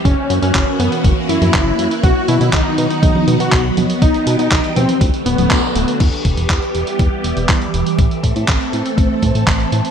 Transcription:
0.05 0.15 F#1 loud
0.05 2.02 E3 medium
0.05 2.02 A#3 medium
0.05 0.38 C#4 loud
0.05 2.02 C#4 medium
0.05 3.98 F#4 medium
0.05 kick loud
0.05 closed hi-hat medium
0.30 0.39 F#2 loud
0.30 closed hi-hat medium
0.42 0.52 F#2 loud
0.42 0.75 C#4 medium
0.42 closed hi-hat medium
0.55 0.64 F#1 loud
0.55 kick loud
0.55 clap loud
0.55 closed hi-hat medium
0.80 0.89 F#2 medium
0.80 1.01 B3 medium
0.80 closed hi-hat medium
0.92 closed hi-hat medium
1.04 1.14 F#1 medium
1.04 kick loud
1.04 closed hi-hat medium
1.29 1.38 F#2 medium
1.29 1.94 E4 medium
1.29 closed hi-hat medium
1.42 1.51 F#2 medium
1.42 closed hi-hat medium
1.42 high conga medium
1.54 1.73 F#1 loud
1.54 kick loud
1.54 clap loud
1.54 closed hi-hat medium
1.79 1.88 F#2 medium
1.79 closed hi-hat medium
1.91 closed hi-hat medium
2.03 2.13 B1 loud
2.03 4.00 D#3 medium
2.03 4.00 F#3 medium
2.03 4.98 B3 medium
2.03 2.25 F#4 loud
2.03 kick loud
2.03 closed hi-hat medium
2.28 2.38 B2 loud
2.28 2.50 E4 medium
2.28 closed hi-hat medium
2.41 2.50 B2 loud
2.41 closed hi-hat medium
2.53 2.62 B1 loud
2.53 2.86 D#4 loud
2.53 kick loud
2.53 clap loud
2.53 closed hi-hat medium
2.78 2.87 B2 medium
2.78 closed hi-hat medium
2.90 3.34 D#4 medium
2.90 closed hi-hat medium
3.03 3.12 B1 medium
3.03 kick loud
3.03 closed hi-hat medium
3.15 high conga medium
3.27 3.37 B2 medium
3.27 closed hi-hat medium
3.40 3.49 B2 medium
3.40 3.62 F#4 loud
3.40 closed hi-hat medium
3.52 3.71 B1 loud
3.52 kick loud
3.52 clap loud
3.52 closed hi-hat medium
3.77 3.86 B2 medium
3.77 closed hi-hat medium
3.77 high conga medium
3.90 closed hi-hat medium
4.02 4.11 B1 loud
4.02 5.00 E3 medium
4.02 5.00 G3 medium
4.02 4.35 D#4 medium
4.02 5.00 G4 medium
4.02 kick loud
4.02 closed hi-hat medium
4.14 closed hi-hat soft
4.27 4.36 B2 loud
4.27 closed hi-hat medium
4.39 4.48 B2 loud
4.39 4.72 D#4 loud
4.39 closed hi-hat medium
4.51 4.61 B1 loud
4.51 kick loud
4.51 clap loud
4.51 closed hi-hat medium
4.64 closed hi-hat soft
4.76 4.86 B2 medium
4.76 4.98 C4 loud
4.76 closed hi-hat medium
4.76 high conga medium
4.89 closed hi-hat medium
5.01 5.10 D2 medium
5.01 5.99 D3 medium
5.01 5.99 F#3 medium
5.01 5.99 A3 medium
5.01 5.99 F#4 medium
5.01 kick loud
5.01 closed hi-hat medium
5.14 closed hi-hat soft
5.26 5.35 D1 medium
5.26 5.90 B3 loud
5.26 closed hi-hat medium
5.38 5.48 D1 medium
5.38 closed hi-hat medium
5.38 high conga medium
5.51 5.60 D2 loud
5.51 kick loud
5.51 clap loud
5.51 closed hi-hat medium
5.75 5.85 D1 medium
5.75 closed hi-hat medium
5.88 closed hi-hat medium
6.00 6.10 E2 loud
6.00 9.91 E3 medium
6.00 7.97 G3 medium
6.00 7.97 B3 medium
6.00 7.97 G4 medium
6.00 kick loud
6.00 closed hi-hat medium
6.00 crash medium
6.13 closed hi-hat soft
6.25 6.34 E1 loud
6.25 kick medium
6.25 closed hi-hat medium
6.37 6.47 E1 loud
6.37 closed hi-hat medium
6.50 6.59 E2 medium
6.50 kick loud
6.50 clap loud
6.50 closed hi-hat medium
6.62 closed hi-hat soft
6.75 6.84 E1 medium
6.75 closed hi-hat medium
6.87 closed hi-hat medium
6.99 7.09 E2 medium
6.99 kick loud
6.99 closed hi-hat medium
7.24 7.34 E1 medium
7.24 closed hi-hat medium
7.37 7.46 E1 medium
7.37 closed hi-hat medium
7.49 7.68 E2 medium
7.49 kick loud
7.49 clap loud
7.49 closed hi-hat medium
7.62 closed hi-hat soft
7.74 7.83 E1 medium
7.74 closed hi-hat medium
7.86 closed hi-hat medium
7.99 8.08 A1 loud
7.99 9.91 A3 medium
7.99 9.91 C4 medium
7.99 9.91 A4 medium
7.99 kick loud
7.99 closed hi-hat medium
8.11 closed hi-hat soft
8.23 8.33 A2 medium
8.23 kick medium
8.23 closed hi-hat medium
8.36 8.45 A2 loud
8.36 closed hi-hat medium
8.48 8.58 A1 medium
8.48 kick loud
8.48 clap loud
8.48 closed hi-hat medium
8.61 closed hi-hat soft
8.73 8.82 A2 medium
8.73 closed hi-hat medium
8.86 closed hi-hat soft
8.98 9.07 A1 medium
8.98 kick loud
8.98 closed hi-hat medium
9.23 9.32 A2 medium
9.23 kick medium
9.23 closed hi-hat medium
9.35 9.44 A2 medium
9.35 closed hi-hat medium
9.47 9.66 A1 medium
9.47 kick loud
9.47 clap loud
9.47 closed hi-hat medium
9.60 closed hi-hat soft
9.72 9.81 A2 medium
9.72 closed hi-hat medium
9.85 closed hi-hat medium

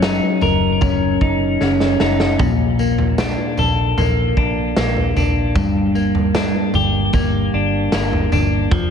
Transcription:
0.00 0.19 F#1 medium
0.00 2.40 F#3 medium
0.00 0.80 C#4 medium
0.00 1.20 D#4 medium
0.00 snare loud
0.00 tambourine loud
0.41 0.77 F#1 loud
0.41 3.58 A#4 medium
0.41 floor tom medium
0.41 tambourine medium
0.81 1.17 F#1 loud
0.81 1.60 C#4 medium
0.81 kick medium
0.81 floor tom medium
0.81 tambourine medium
1.21 1.56 F#1 medium
1.21 1.99 D#4 medium
1.21 kick medium
1.61 1.96 F#1 medium
1.61 2.48 C#4 medium
1.61 snare medium
1.80 snare medium
2.00 2.35 F#1 medium
2.00 2.48 D#4 medium
2.00 snare medium
2.20 snare medium
2.39 3.34 A#1 medium
2.39 5.55 A#2 medium
2.39 kick loud
2.39 floor tom loud
2.39 tambourine medium
2.79 3.98 A#3 medium
2.79 tambourine medium
2.98 floor tom medium
3.18 4.37 D4 medium
3.18 snare loud
3.18 tambourine loud
3.58 3.93 A#1 loud
3.58 5.64 A4 medium
3.58 floor tom medium
3.58 tambourine medium
3.98 4.33 A#1 loud
3.98 4.77 A#3 medium
3.98 floor tom medium
3.98 tambourine medium
4.37 4.72 A#1 loud
4.37 5.16 D4 medium
4.37 kick medium
4.76 5.12 A#1 medium
4.76 5.95 A#3 medium
4.76 snare loud
4.76 tambourine loud
4.97 floor tom medium
5.17 5.55 A#1 medium
5.17 6.35 D4 medium
5.17 floor tom medium
5.17 tambourine medium
5.55 6.50 G1 medium
5.55 8.71 G2 medium
5.55 kick loud
5.55 floor tom loud
5.55 tambourine medium
5.95 7.13 A#3 medium
5.95 tambourine medium
6.15 floor tom medium
6.35 7.54 D4 medium
6.35 snare loud
6.35 tambourine loud
6.74 7.09 G1 loud
6.74 8.80 G4 medium
6.74 floor tom medium
6.74 tambourine medium
7.13 7.48 G1 loud
7.13 7.92 A#3 medium
7.13 kick loud
7.13 floor tom medium
7.13 tambourine medium
7.53 7.88 G1 loud
7.53 8.32 D4 medium
7.92 8.28 G1 medium
7.92 8.80 A#3 medium
7.92 snare loud
7.92 tambourine medium
8.13 floor tom medium
8.32 8.67 G1 loud
8.32 8.90 D4 medium
8.32 floor tom medium
8.32 tambourine medium
8.71 8.90 F1 loud
8.71 8.90 F3 medium
8.71 kick loud
8.71 floor tom loud
8.71 tambourine medium

